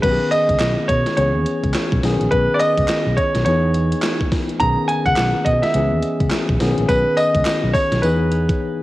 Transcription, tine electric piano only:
0.03 1.15 D#3 medium
0.03 1.15 B3 medium
0.03 1.16 C#4 medium
0.03 0.12 G4 medium
0.12 1.17 G#4 medium
1.17 2.03 E3 medium
1.17 2.02 B3 medium
1.17 2.03 C#4 medium
1.17 2.04 G#4 medium
2.03 3.43 D#3 medium
2.03 3.43 B3 medium
2.03 3.44 C#4 medium
2.03 3.44 G#4 medium
3.46 4.58 E3 medium
3.46 4.58 B3 medium
3.46 4.59 D#4 medium
3.46 4.59 G#4 medium
4.60 5.72 D#3 medium
4.60 5.72 B3 medium
4.60 5.73 C#4 medium
4.60 5.73 G#4 medium
5.75 6.60 E3 medium
5.75 6.60 B3 medium
5.75 6.60 C#4 medium
5.75 6.61 G#4 medium
6.60 8.00 D#3 medium
6.60 8.01 B3 medium
6.60 8.01 C#4 medium
6.60 8.01 G#4 medium
8.03 8.83 E3 medium
8.03 8.83 B3 medium
8.03 8.83 D#4 medium
8.03 8.83 G#4 medium

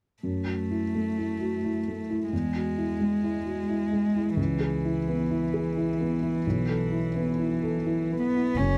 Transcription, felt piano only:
0.23 2.28 F#2 soft
0.47 0.84 F#4 soft
0.71 1.08 E4 soft
0.95 1.32 A3 soft
1.18 1.55 E4 soft
1.41 1.77 F#4 soft
1.64 2.01 E4 soft
1.88 2.24 A3 soft
2.10 2.32 E4 soft
2.33 4.34 E2 soft
2.56 2.92 F#4 soft
2.78 3.14 E4 soft
3.00 3.37 G#3 soft
3.24 3.60 E4 soft
3.46 3.82 F#4 soft
3.69 4.05 E4 soft
3.93 4.29 G#3 soft
4.16 4.38 E4 soft
4.37 6.40 C#2 soft
4.60 4.97 G#4 soft
4.85 5.21 E4 soft
5.08 5.44 B3 soft
5.31 5.67 E4 soft
5.54 5.90 G#4 soft
5.77 6.13 E4 soft
6.01 6.37 B3 soft
6.22 6.45 E4 soft
6.47 8.55 B1 soft
6.69 7.06 A4 soft
6.91 7.28 E4 soft
7.15 7.52 B3 soft
7.39 7.76 E4 soft
7.63 8.01 A4 soft
7.86 8.25 E4 soft
8.11 8.49 B3 soft
8.36 8.59 E4 soft
8.59 8.78 F#2 soft

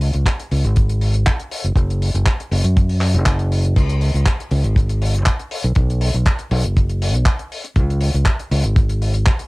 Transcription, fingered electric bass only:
0.00 0.11 C#2 medium
0.14 0.24 C#2 medium
0.51 0.62 C#2 medium
0.64 1.23 G#1 medium
1.64 1.74 F#1 medium
1.75 2.11 F#1 medium
2.14 2.24 F#1 medium
2.51 2.62 F#1 medium
2.64 3.15 F#2 medium
3.14 3.73 F#1 medium
3.76 4.11 C#2 medium
4.14 4.24 C#2 medium
4.51 4.62 C#2 loud
4.64 5.23 G#1 medium
5.64 5.74 B1 medium
5.76 6.11 B1 medium
6.14 6.24 B1 medium
6.51 6.62 B1 loud
6.64 7.14 F#1 medium
7.14 7.24 B1 medium
7.76 8.11 C#2 loud
8.14 8.24 C#2 medium
8.51 8.62 C#2 loud
8.64 9.23 G#1 medium

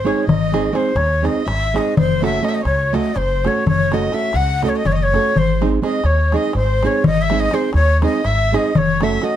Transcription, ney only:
0.07 0.29 C#5 medium
0.29 0.78 D#5 medium
0.76 0.98 C5 medium
0.97 1.28 C#5 medium
1.26 1.49 D#5 medium
1.47 1.79 E5 loud
1.77 1.98 D#5 medium
1.99 2.22 C5 loud
2.25 2.46 E5 medium
2.44 2.51 D#5 medium
2.49 2.57 E5 medium
2.55 2.64 D#5 medium
2.65 2.96 C#5 medium
2.95 3.19 D#5 medium
3.18 3.49 C5 medium
3.47 3.68 C#5 medium
3.68 3.95 C#5 loud
3.94 4.16 D#5 medium
4.14 4.38 E5 medium
4.36 4.64 F#5 loud
4.65 4.71 D#5 medium
4.69 4.77 C#5 medium
4.76 4.88 D#5 medium
4.86 4.94 C#5 medium
4.92 5.04 D#5 medium
5.03 5.39 C#5 loud
5.38 5.63 C5 loud
5.84 6.07 D#5 medium
6.05 6.35 C#5 medium
6.34 6.55 D#5 medium
6.57 6.88 C5 medium
6.86 7.06 C#5 medium
7.07 7.23 D#5 loud
7.21 7.41 E5 medium
7.40 7.55 D#5 loud
7.54 7.74 C5 medium
7.75 8.01 C#5 loud
8.03 8.27 D#5 loud
8.25 8.57 E5 loud
8.55 8.79 D#5 medium
8.77 9.05 C#5 loud
9.03 9.25 E5 loud
9.24 9.36 D#5 medium

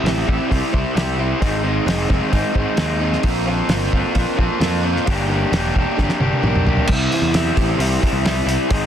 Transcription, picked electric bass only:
0.03 0.23 A1 medium
0.28 0.37 A1 medium
0.51 0.61 C2 medium
0.74 0.83 C2 medium
0.95 1.32 C2 medium
1.41 1.78 G#1 medium
1.86 2.05 F1 medium
2.10 2.19 F1 medium
2.33 2.42 G#1 medium
2.56 2.65 G#1 medium
2.78 3.15 D#2 medium
3.24 3.61 A#1 medium
3.69 3.88 G1 medium
3.93 4.02 G1 medium
4.15 4.24 A#1 medium
4.38 4.48 A#1 medium
4.60 4.97 F2 medium
5.08 5.44 G1 medium
5.52 5.70 E1 medium
5.76 5.84 E1 medium
5.98 6.07 G1 medium
6.20 6.29 G1 medium
6.43 6.79 B1 medium
6.89 7.07 C2 medium
7.22 7.49 E2 medium
7.57 7.75 A1 loud
7.78 7.97 C2 loud
8.12 8.40 C2 medium
8.46 8.56 C2 medium
8.71 8.86 G#1 medium

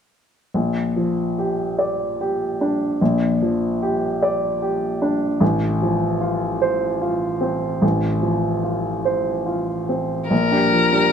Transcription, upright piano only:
0.54 2.96 A#1 soft
0.96 1.62 F3 soft
1.38 2.03 G4 soft
1.79 2.43 D5 soft
2.21 2.85 G4 soft
2.61 3.25 D4 soft
3.01 5.38 A#1 soft
3.42 4.06 F3 soft
3.82 4.46 G4 soft
4.22 4.86 D5 soft
4.62 5.25 G4 soft
5.02 5.41 D4 soft
5.40 7.78 A1 soft
5.82 6.46 F3 soft
6.21 6.85 F4 soft
6.62 7.26 C5 soft
7.01 7.66 F4 soft
7.41 8.06 C4 soft
7.82 10.27 A1 soft
8.22 8.89 F3 soft
8.64 9.30 F4 soft
9.05 9.73 C5 soft
9.46 10.14 F4 soft
9.89 10.31 C4 soft
10.30 10.51 A#1 soft
10.51 10.70 D4 soft
10.51 10.71 G4 soft
10.73 11.06 F3 soft
10.92 11.11 D4 soft
10.92 11.12 G4 soft

